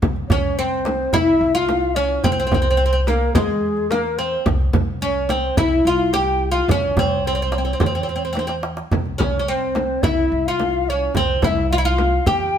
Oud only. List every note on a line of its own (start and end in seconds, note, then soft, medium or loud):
0.32 0.59 C#4 medium
0.59 1.15 C4 medium
1.14 1.54 E4 loud
1.55 1.96 F4 medium
1.96 2.24 C#4 medium
2.24 2.31 C4 medium
2.32 2.38 C4 medium
2.40 2.46 C4 medium
2.47 2.53 C4 soft
2.54 2.61 C4 medium
2.62 2.69 C4 soft
2.71 2.76 C4 medium
2.77 2.84 C4 medium
2.86 2.91 C4 medium
2.93 3.00 C4 medium
3.08 3.35 A#3 medium
3.35 3.91 G#3 medium
3.92 4.20 A#3 medium
4.18 4.45 C4 medium
5.02 5.30 C#4 medium
5.30 5.57 C4 medium
5.58 5.87 E4 medium
5.87 6.13 F4 medium
6.14 6.51 G4 medium
6.52 6.70 F4 medium
6.71 6.99 C#4 medium
6.99 7.26 C4 medium
7.27 7.33 C4 medium
7.35 7.41 C4 soft
7.42 7.48 C4 medium
7.52 7.57 C4 soft
7.58 7.64 C4 soft
7.65 7.71 C4 soft
7.73 7.79 C4 soft
7.80 7.85 C4 soft
7.86 7.93 C4 soft
7.95 8.01 C4 soft
8.03 8.08 C4 soft
8.09 8.14 C4 soft
8.16 8.23 C4 soft
8.25 8.31 C4 soft
8.33 8.38 C4 medium
8.39 8.45 C4 soft
8.47 8.53 C4 medium
9.18 9.38 C#4 medium
9.39 9.47 C#4 medium
9.48 10.06 C4 medium
10.04 10.47 E4 medium
10.48 10.89 F4 medium
10.90 11.16 C#4 medium
11.17 11.44 C4 medium
11.44 11.72 E4 medium
11.73 11.78 F4 medium
11.78 11.85 E4 medium
11.85 12.27 F4 medium
12.27 12.58 G4 medium